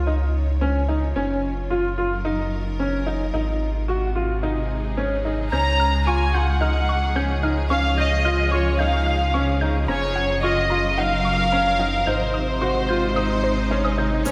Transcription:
0.00 1.14 C#2 medium
0.00 3.34 C#3 medium
0.00 1.16 G#3 medium
0.00 4.22 F4 medium
0.00 2.03 C#5 medium
0.00 downlifter medium
0.07 0.41 D#4 medium
0.61 0.79 C#4 medium
0.88 1.06 D#4 medium
1.16 3.32 F#1 medium
1.16 1.50 C#4 medium
1.37 3.34 F#3 medium
1.70 1.88 F4 medium
1.98 2.15 F4 medium
2.15 4.04 A#4 medium
2.25 2.59 D#4 medium
2.80 2.97 C#4 medium
3.06 3.24 D#4 medium
3.34 5.50 G#1 medium
3.34 5.53 C3 medium
3.34 3.68 D#4 medium
3.64 9.89 G#3 medium
3.88 4.06 F#4 medium
4.15 4.33 F4 medium
4.33 6.71 D#4 medium
4.33 10.76 G#4 medium
4.43 4.78 D#4 medium
4.97 5.15 C#4 medium
5.25 5.42 D#4 medium
5.52 9.86 C#2 medium
5.52 12.07 C#3 medium
5.52 5.87 C#4 medium
5.52 6.03 A#5 medium
5.52 5.61 G6 medium
5.80 5.88 F6 medium
6.07 6.24 F4 medium
6.07 6.34 G#5 medium
6.07 6.16 C#6 medium
6.34 6.52 F4 medium
6.34 7.44 F#5 medium
6.34 6.43 G6 medium
6.46 12.95 F3 medium
6.61 6.96 D#4 medium
6.61 6.70 F6 medium
6.89 6.97 C#6 medium
7.16 7.33 C#4 medium
7.16 7.25 G6 medium
7.43 7.60 D#4 medium
7.43 7.52 F6 medium
7.70 8.05 C#4 medium
7.70 7.96 F5 medium
7.70 7.79 C#6 medium
7.98 8.49 D#5 medium
7.98 8.06 G6 medium
8.25 8.42 F4 medium
8.25 8.34 F6 medium
8.52 8.70 F4 medium
8.52 8.80 C#5 medium
8.52 8.61 C#6 medium
8.79 9.14 D#4 medium
8.79 9.62 F5 medium
8.79 8.88 G6 medium
9.06 9.15 F6 medium
9.34 9.52 C#4 medium
9.34 9.43 C#6 medium
9.61 9.79 D#4 medium
9.61 9.70 G6 medium
9.88 12.04 F#1 medium
9.88 10.23 C#4 medium
9.88 10.40 C#5 medium
9.88 9.97 A#5 medium
10.16 10.24 F#5 medium
10.26 12.07 F#3 medium
10.43 10.61 F4 medium
10.43 10.98 D#5 medium
10.43 10.52 C#6 medium
10.70 10.88 F4 medium
10.70 10.79 A#5 medium
10.87 12.88 A#4 medium
10.98 11.32 D#4 medium
10.98 12.07 F5 medium
10.98 11.06 F#5 medium
11.25 11.34 C#6 medium
11.52 11.70 C#4 medium
11.52 11.61 A#5 medium
11.80 11.97 D#4 medium
11.80 11.88 F#5 medium
12.07 14.23 G#1 medium
12.07 14.25 C3 medium
12.07 12.42 D#4 medium
12.07 13.98 C5 medium
12.07 12.15 G6 medium
12.34 12.43 D#6 medium
12.52 14.32 D#4 medium
12.58 14.32 G#3 medium
12.58 12.79 F#4 medium
12.58 12.70 C6 medium
12.89 13.07 F4 medium
12.89 12.97 G6 medium
13.07 14.26 C5 medium
13.16 13.51 D#4 medium
13.16 13.25 D#6 medium
13.44 13.56 C5 medium
13.71 13.88 C#4 medium
13.71 13.79 D#5 medium
13.85 13.90 D#6 medium
13.98 14.15 D#4 medium
13.98 14.11 G6 medium
14.25 14.32 C#3 medium
14.25 14.32 C#4 medium
14.25 14.32 C#5 medium
14.25 14.32 F6 medium
14.25 shaker soft

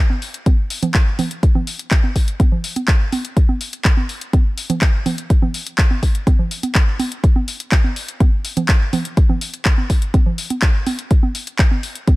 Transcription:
0.10 high conga medium
0.22 open hi-hat medium
0.34 closed hi-hat medium
0.46 kick loud
0.46 closed hi-hat medium
0.46 high conga medium
0.70 open hi-hat loud
0.82 closed hi-hat medium
0.82 high conga medium
0.82 low conga medium
0.94 kick loud
0.94 clap loud
0.94 closed hi-hat medium
1.19 open hi-hat medium
1.19 high conga medium
1.19 low conga loud
1.31 closed hi-hat medium
1.43 kick loud
1.43 closed hi-hat medium
1.55 high conga medium
1.55 low conga medium
1.67 open hi-hat loud
1.79 closed hi-hat medium
1.91 kick loud
1.91 clap loud
1.91 closed hi-hat medium
2.04 high conga medium
2.16 kick medium
2.16 open hi-hat medium
2.28 closed hi-hat medium
2.40 kick loud
2.40 closed hi-hat medium
2.40 high conga medium
2.52 low conga medium
2.64 open hi-hat loud
2.76 closed hi-hat medium
2.76 high conga medium
2.88 kick loud
2.88 clap loud
2.88 closed hi-hat medium
3.12 open hi-hat medium
3.12 high conga medium
3.25 closed hi-hat medium
3.37 kick loud
3.37 closed hi-hat medium
3.49 high conga medium
3.61 open hi-hat loud
3.73 closed hi-hat medium
3.85 kick loud
3.85 clap loud
3.85 closed hi-hat medium
3.97 high conga medium
4.09 open hi-hat medium
4.21 closed hi-hat medium
4.33 kick loud
4.33 closed hi-hat medium
4.33 high conga medium
4.58 open hi-hat loud
4.70 closed hi-hat medium
4.70 high conga medium
4.70 low conga medium
4.81 kick loud
4.81 clap loud
4.81 closed hi-hat medium
5.06 open hi-hat medium
5.06 high conga medium
5.06 low conga medium
5.18 closed hi-hat medium
5.30 kick loud
5.30 closed hi-hat medium
5.42 high conga medium
5.42 low conga medium
5.54 open hi-hat loud
5.67 closed hi-hat medium
5.78 kick loud
5.78 clap loud
5.78 closed hi-hat medium
5.91 high conga medium
6.03 kick medium
6.03 open hi-hat medium
6.15 closed hi-hat medium
6.27 kick loud
6.27 closed hi-hat medium
6.27 high conga loud
6.39 low conga medium
6.51 open hi-hat loud
6.63 closed hi-hat medium
6.63 high conga medium
6.75 kick loud
6.75 clap loud
6.75 closed hi-hat medium
6.99 open hi-hat medium
6.99 high conga loud
7.12 closed hi-hat medium
7.24 kick loud
7.24 closed hi-hat medium
7.36 high conga loud
7.48 open hi-hat loud
7.60 closed hi-hat medium
7.72 kick loud
7.72 clap loud
7.72 closed hi-hat medium
7.84 high conga medium
7.96 open hi-hat medium
8.08 closed hi-hat medium
8.20 kick loud
8.20 closed hi-hat medium
8.20 high conga loud
8.45 open hi-hat loud
8.57 closed hi-hat medium
8.57 high conga medium
8.57 low conga medium
8.68 kick loud
8.68 clap loud
8.68 closed hi-hat medium
8.93 open hi-hat medium
8.93 high conga loud
8.93 low conga loud
9.05 closed hi-hat medium
9.17 kick loud
9.17 closed hi-hat medium
9.29 high conga medium
9.29 low conga medium
9.41 open hi-hat loud
9.54 closed hi-hat medium
9.65 kick loud
9.65 clap loud
9.65 closed hi-hat medium
9.78 high conga medium
9.90 kick medium
9.90 open hi-hat medium
10.02 closed hi-hat medium
10.14 kick loud
10.14 closed hi-hat medium
10.14 high conga loud
10.26 low conga medium
10.38 open hi-hat loud
10.50 closed hi-hat medium
10.50 high conga medium
10.62 kick loud
10.62 clap loud
10.62 closed hi-hat medium
10.87 open hi-hat medium
10.87 high conga loud
10.99 closed hi-hat medium
11.11 kick loud
11.11 closed hi-hat medium
11.23 high conga medium
11.35 open hi-hat loud
11.47 closed hi-hat medium
11.59 kick loud
11.59 clap loud
11.59 closed hi-hat medium
11.71 high conga medium
11.83 open hi-hat loud
11.95 closed hi-hat medium
12.07 kick loud
12.07 closed hi-hat medium
12.07 high conga loud

